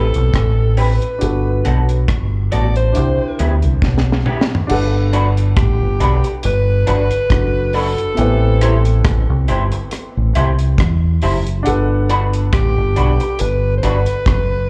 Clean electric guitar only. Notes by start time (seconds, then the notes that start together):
0.77 C4 G4 B4
1.65 B3 F#4 A4
2.52 B3 F#4 A4
3.39 B3 E4 G4
4.26 B3 E4 G4
5.13 D4 F#4 B4
6.00 D4 F#4 B4
6.24 muted clean electric guitar stroke
6.87 D4 F#4 B4
7.74 D4 F#4 B4
8.61 E4 G4 C5
9.48 E4 G4 C5
9.72 muted clean electric guitar stroke
10.35 E4 G4 C5
11.23 E4 G4 C5
12.10 D4 F#4 B4
12.96 D4 F#4 B4
13.21 muted clean electric guitar stroke
13.83 D4 F#4 B4